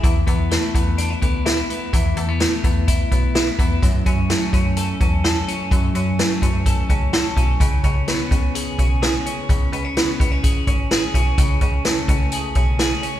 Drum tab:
HH |xxxxxxxx|xxxxxxxx|xxxxxxxx|xxxxxxxx|
SD |--o---o-|--o---o-|--o---o-|--o---o-|
BD |oo-o-o--|o--ooo-o|oo-o-o--|o--ooo-o|

HH |xxxxxxxx|xxxxxxxx|xxxxxxxx|
SD |--o---o-|--o---o-|--o---o-|
BD |oo-o-o--|o--ooo-o|oo-o-o--|